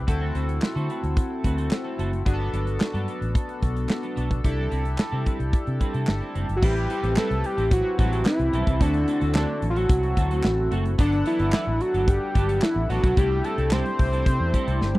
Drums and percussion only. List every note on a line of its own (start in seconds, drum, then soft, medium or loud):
0.08 kick loud
0.08 closed hi-hat medium
0.35 closed hi-hat medium
0.49 closed hi-hat soft
0.62 snare loud
0.62 clap medium
0.77 closed hi-hat soft
0.90 closed hi-hat medium
1.04 closed hi-hat soft
1.17 kick loud
1.17 closed hi-hat medium
1.44 kick medium
1.44 closed hi-hat medium
1.58 closed hi-hat medium
1.71 snare loud
1.71 clap medium
1.99 closed hi-hat medium
2.13 closed hi-hat soft
2.26 kick loud
2.26 closed hi-hat medium
2.54 closed hi-hat medium
2.67 closed hi-hat soft
2.80 snare loud
2.80 clap medium
2.95 closed hi-hat soft
3.08 closed hi-hat medium
3.22 closed hi-hat soft
3.35 kick loud
3.35 closed hi-hat medium
3.49 closed hi-hat soft
3.62 kick medium
3.62 closed hi-hat medium
3.76 closed hi-hat medium
3.89 snare loud
3.89 clap medium
4.03 closed hi-hat soft
4.17 closed hi-hat medium
4.31 kick medium
4.31 closed hi-hat soft
4.44 kick medium
4.44 closed hi-hat medium
4.72 closed hi-hat medium
4.85 closed hi-hat soft
4.98 snare loud
4.98 clap medium
5.26 kick medium
5.26 closed hi-hat medium
5.40 closed hi-hat soft
5.53 kick loud
5.53 closed hi-hat medium
5.67 closed hi-hat soft
5.81 kick medium
5.81 closed hi-hat medium
5.94 closed hi-hat soft
6.07 snare loud
6.07 clap loud
6.35 closed hi-hat medium
6.49 closed hi-hat soft
6.63 kick loud
6.63 crash loud
6.76 closed hi-hat soft
6.90 closed hi-hat medium
7.03 closed hi-hat medium
7.16 snare loud
7.16 clap loud
7.31 closed hi-hat soft
7.44 closed hi-hat medium
7.58 closed hi-hat soft
7.71 kick loud
7.71 closed hi-hat loud
7.99 kick loud
7.99 closed hi-hat medium
8.13 closed hi-hat medium
8.25 snare loud
8.25 clap loud
8.39 closed hi-hat soft
8.53 closed hi-hat medium
8.67 kick medium
8.67 closed hi-hat medium
8.81 kick loud
8.81 closed hi-hat loud
8.94 closed hi-hat soft
9.08 closed hi-hat medium
9.21 closed hi-hat medium
9.35 snare loud
9.35 clap loud
9.62 closed hi-hat medium
9.76 closed hi-hat medium
9.89 kick loud
9.89 closed hi-hat loud
10.03 closed hi-hat soft
10.17 kick loud
10.17 closed hi-hat medium
10.31 closed hi-hat medium
10.44 snare loud
10.44 clap loud
10.72 closed hi-hat medium
10.85 closed hi-hat medium
10.99 kick loud
10.99 closed hi-hat loud
11.12 closed hi-hat soft
11.26 closed hi-hat medium
11.39 closed hi-hat soft
11.52 snare loud
11.52 clap loud
11.81 closed hi-hat medium
11.94 closed hi-hat soft
12.08 kick loud
12.08 closed hi-hat medium
12.35 kick loud
12.35 closed hi-hat medium
12.49 closed hi-hat medium
12.62 snare loud
12.62 clap loud
12.90 closed hi-hat medium
13.04 kick loud
13.04 closed hi-hat soft
13.17 kick loud
13.17 closed hi-hat loud
13.44 closed hi-hat medium
13.58 closed hi-hat medium
13.71 snare loud
13.71 clap loud
13.86 closed hi-hat soft
13.99 kick medium
13.99 open hi-hat medium
14.13 closed hi-hat medium
14.26 kick loud
14.26 closed hi-hat loud
14.54 kick medium
14.54 closed hi-hat medium
14.68 closed hi-hat medium
14.82 snare medium
14.95 high tom medium